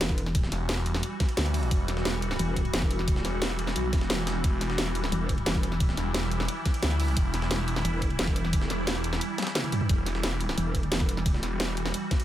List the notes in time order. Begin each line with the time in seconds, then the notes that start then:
Already playing: E3 G3 F#4, impact
0.01 E1, snare, closed hi-hat, ride
0.09 kick, snare
0.18 closed hi-hat, ride
0.26 snare
0.35 kick, closed hi-hat, ride
0.43 snare
0.52 E1, snare, closed hi-hat, ride
0.69 snare, closed hi-hat, ride
0.77 snare
0.86 closed hi-hat, ride
0.94 snare
1.03 closed hi-hat, ride
1.20 kick, snare, closed hi-hat, ride
1.29 ride
1.37 D2, snare, closed hi-hat
1.46 ride
1.54 closed hi-hat, open hi-hat
1.63 ride
1.71 E1, kick, closed hi-hat, ride
1.88 snare, closed hi-hat, ride
1.97 snare
2.05 E1, snare, closed hi-hat, ride
2.22 closed hi-hat, ride
2.31 snare
2.39 E1, closed hi-hat, ride
2.56 kick, closed hi-hat, ride
2.65 ride
2.74 E1, snare, closed hi-hat, ride
2.82 kick, snare
2.91 closed hi-hat, ride
2.99 snare
3.08 kick, closed hi-hat, ride
3.16 snare
3.25 E1, snare, closed hi-hat, ride
3.42 snare, closed hi-hat, ride
3.50 snare
3.59 closed hi-hat, ride
3.67 snare
3.76 B1, closed hi-hat, ride
3.93 E1, kick, snare, closed hi-hat, ride
4.01 snare
4.10 snare, closed hi-hat, ride
4.18 snare
4.27 snare, closed hi-hat, ride
4.44 E1 E4, kick, closed hi-hat, ride
4.61 snare, closed hi-hat, ride
4.70 snare
4.78 E1, snare, closed hi-hat, ride
4.95 closed hi-hat, ride
5.04 snare
5.12 E1, closed hi-hat, ride
5.29 kick, closed hi-hat, ride
5.38 ride
5.46 E1, snare, closed hi-hat, ride
5.55 kick, snare
5.63 closed hi-hat, ride
5.72 snare
5.80 kick, closed hi-hat, ride
5.89 snare
5.97 E1, snare, closed hi-hat, ride
6.14 snare, closed hi-hat, ride
6.23 snare
6.31 closed hi-hat, ride
6.40 snare
6.48 closed hi-hat, ride
6.66 kick, snare, closed hi-hat, ride
6.74 ride
6.83 D2, snare, closed hi-hat
6.91 ride
7.00 closed hi-hat, open hi-hat
7.08 ride
7.17 E1, kick, closed hi-hat, ride
7.34 snare, closed hi-hat, ride
7.42 snare
7.51 E1, snare, closed hi-hat, ride
7.68 closed hi-hat, ride
7.76 snare
7.85 E1, closed hi-hat, ride
8.02 kick, closed hi-hat, ride
8.10 ride
8.19 E1, snare, closed hi-hat, ride
8.27 kick, snare
8.36 closed hi-hat, ride
8.44 snare
8.53 kick, closed hi-hat, ride
8.62 snare
8.70 E1, snare, closed hi-hat, ride
8.87 snare, closed hi-hat, ride
8.96 snare
9.04 closed hi-hat, ride
9.13 snare
9.21 closed hi-hat, ride
9.38 snare, closed hi-hat, high tom, ride
9.42 snare, ride
9.47 snare, ride
9.55 snare, closed hi-hat, mid tom, ride
9.64 mid tom, ride
9.72 closed hi-hat, mid tom, ride
9.81 mid tom
9.89 E1 F#4, kick, closed hi-hat, ride
10.06 snare, closed hi-hat, ride
10.15 snare
10.23 E1, snare, closed hi-hat, ride
10.41 closed hi-hat, ride
10.49 snare
10.58 E1, closed hi-hat, ride
10.75 kick, closed hi-hat, ride
10.83 ride
10.92 E1, snare, closed hi-hat, ride
11.00 kick, snare
11.09 closed hi-hat, ride
11.17 snare
11.26 kick, closed hi-hat, ride
11.34 snare
11.43 E1, snare, closed hi-hat, ride
11.60 snare, closed hi-hat, ride
11.68 snare
11.77 closed hi-hat, ride
11.86 snare
11.94 closed hi-hat, ride
12.11 kick, snare, closed hi-hat, ride
12.20 ride